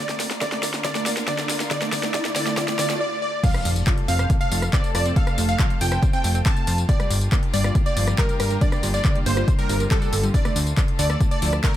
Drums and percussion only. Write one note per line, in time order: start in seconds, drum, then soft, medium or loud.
0.09 snare medium
0.09 closed hi-hat medium
0.09 tambourine soft
0.20 snare medium
0.20 open hi-hat loud
0.20 tambourine medium
0.31 snare medium
0.31 closed hi-hat medium
0.31 tambourine soft
0.41 kick loud
0.41 snare medium
0.41 closed hi-hat medium
0.41 tambourine soft
0.52 snare medium
0.52 closed hi-hat medium
0.63 snare loud
0.63 open hi-hat loud
0.63 tambourine medium
0.74 snare medium
0.74 closed hi-hat medium
0.74 tambourine soft
0.84 kick loud
0.84 snare loud
0.84 closed hi-hat medium
0.84 tambourine soft
0.95 snare medium
0.95 closed hi-hat medium
0.95 tambourine soft
1.06 snare loud
1.06 open hi-hat loud
1.06 tambourine medium
1.17 snare medium
1.17 closed hi-hat medium
1.17 tambourine soft
1.28 kick loud
1.28 snare loud
1.28 closed hi-hat medium
1.28 tambourine soft
1.39 snare medium
1.39 closed hi-hat medium
1.39 tambourine soft
1.49 snare loud
1.49 open hi-hat loud
1.49 tambourine medium
1.60 snare medium
1.60 closed hi-hat medium
1.60 tambourine soft
1.71 kick loud
1.71 snare loud
1.71 closed hi-hat medium
1.71 tambourine soft
1.82 snare medium
1.82 closed hi-hat medium
1.82 tambourine soft
1.92 kick medium
1.92 snare loud
1.92 open hi-hat loud
1.92 tambourine medium
2.03 snare medium
2.03 closed hi-hat medium
2.03 tambourine soft
2.14 kick loud
2.14 snare loud
2.14 closed hi-hat medium
2.14 tambourine soft
2.25 snare medium
2.25 closed hi-hat medium
2.25 tambourine soft
2.36 snare loud
2.36 open hi-hat loud
2.36 tambourine medium
2.47 snare medium
2.47 closed hi-hat medium
2.47 tambourine soft
2.57 kick loud
2.57 snare loud
2.57 closed hi-hat medium
2.57 tambourine soft
2.68 snare loud
2.68 closed hi-hat medium
2.68 tambourine soft
2.79 snare loud
2.79 open hi-hat loud
2.79 tambourine medium
2.90 snare loud
2.90 closed hi-hat medium
2.90 tambourine soft
3.44 kick loud
3.44 closed hi-hat medium
3.44 crash loud
3.44 tambourine soft
3.54 cross-stick medium
3.54 closed hi-hat medium
3.54 tambourine soft
3.65 open hi-hat loud
3.65 tambourine medium
3.76 closed hi-hat medium
3.76 tambourine soft
3.87 kick loud
3.87 clap loud
3.87 closed hi-hat medium
3.87 tambourine soft
3.98 closed hi-hat medium
4.08 open hi-hat loud
4.08 tambourine medium
4.19 cross-stick medium
4.19 closed hi-hat medium
4.19 tambourine soft
4.30 kick loud
4.30 closed hi-hat medium
4.30 tambourine soft
4.41 closed hi-hat medium
4.41 tambourine soft
4.52 open hi-hat loud
4.52 tambourine medium
4.62 cross-stick medium
4.62 tambourine soft
4.73 kick loud
4.73 clap loud
4.73 closed hi-hat medium
4.73 tambourine soft
4.84 closed hi-hat medium
4.84 tambourine soft
4.95 cross-stick medium
4.95 open hi-hat loud
4.95 tambourine medium
5.05 closed hi-hat medium
5.05 tambourine soft
5.16 kick loud
5.16 closed hi-hat medium
5.16 tambourine soft
5.27 cross-stick medium
5.27 closed hi-hat medium
5.27 tambourine soft
5.38 open hi-hat loud
5.38 tambourine medium
5.49 closed hi-hat medium
5.49 tambourine soft
5.59 kick loud
5.59 clap loud
5.59 closed hi-hat medium
5.59 tambourine soft
5.70 closed hi-hat medium
5.81 open hi-hat loud
5.81 tambourine medium
5.92 cross-stick medium
5.92 closed hi-hat medium
5.92 tambourine soft
6.03 kick loud
6.03 closed hi-hat medium
6.03 tambourine soft
6.13 closed hi-hat medium
6.13 tambourine soft
6.24 open hi-hat loud
6.24 tambourine medium
6.35 closed hi-hat medium
6.35 tambourine soft
6.46 kick loud
6.46 clap loud
6.46 closed hi-hat medium
6.46 tambourine soft
6.57 closed hi-hat medium
6.57 tambourine soft
6.67 open hi-hat loud
6.67 tambourine medium
6.78 closed hi-hat medium
6.78 tambourine soft
6.89 kick loud
6.89 closed hi-hat medium
6.89 tambourine soft
7.00 cross-stick medium
7.00 closed hi-hat soft
7.00 tambourine soft
7.11 open hi-hat loud
7.11 tambourine medium
7.21 closed hi-hat soft
7.21 tambourine soft
7.32 kick loud
7.32 clap loud
7.32 closed hi-hat medium
7.32 tambourine soft
7.43 closed hi-hat medium
7.54 open hi-hat loud
7.54 tambourine medium
7.64 cross-stick medium
7.64 tambourine soft
7.75 kick loud
7.75 closed hi-hat medium
7.75 tambourine soft
7.86 closed hi-hat medium
7.86 tambourine soft
7.97 open hi-hat loud
7.97 tambourine medium
8.08 cross-stick medium
8.08 closed hi-hat medium
8.08 tambourine soft
8.18 kick loud
8.18 clap loud
8.18 closed hi-hat medium
8.18 tambourine soft
8.29 closed hi-hat medium
8.29 tambourine soft
8.40 cross-stick medium
8.40 open hi-hat loud
8.40 tambourine medium
8.51 closed hi-hat medium
8.51 tambourine soft
8.61 kick loud
8.61 closed hi-hat medium
8.61 tambourine soft
8.72 cross-stick medium
8.72 closed hi-hat medium
8.72 tambourine soft
8.83 open hi-hat loud
8.83 tambourine medium
8.94 closed hi-hat soft
8.94 tambourine soft
9.05 kick loud
9.05 clap loud
9.05 closed hi-hat medium
9.05 tambourine soft
9.15 closed hi-hat medium
9.26 open hi-hat loud
9.26 tambourine medium
9.37 cross-stick medium
9.37 tambourine soft
9.48 kick loud
9.48 closed hi-hat medium
9.48 tambourine soft
9.59 closed hi-hat medium
9.59 tambourine soft
9.69 open hi-hat loud
9.69 tambourine medium
9.80 closed hi-hat soft
9.80 tambourine soft
9.91 kick loud
9.91 clap loud
9.91 closed hi-hat medium
9.91 tambourine soft
10.02 closed hi-hat soft
10.02 tambourine soft
10.13 open hi-hat loud
10.13 tambourine medium
10.23 closed hi-hat soft
10.23 tambourine soft
10.34 kick loud
10.34 closed hi-hat medium
10.34 tambourine soft
10.45 cross-stick medium
10.45 closed hi-hat medium
10.45 tambourine soft
10.56 open hi-hat loud
10.56 tambourine medium
10.67 closed hi-hat soft
10.67 tambourine soft
10.77 kick loud
10.77 clap loud
10.77 closed hi-hat medium
10.77 tambourine soft
10.88 closed hi-hat soft
10.99 open hi-hat loud
10.99 tambourine medium
11.10 cross-stick medium
11.10 tambourine soft
11.21 kick loud
11.21 closed hi-hat medium
11.21 tambourine soft
11.31 closed hi-hat medium
11.31 tambourine soft
11.42 open hi-hat loud
11.42 tambourine medium
11.53 cross-stick medium
11.53 closed hi-hat soft
11.53 tambourine soft
11.64 kick loud
11.64 clap loud
11.64 closed hi-hat medium
11.64 tambourine soft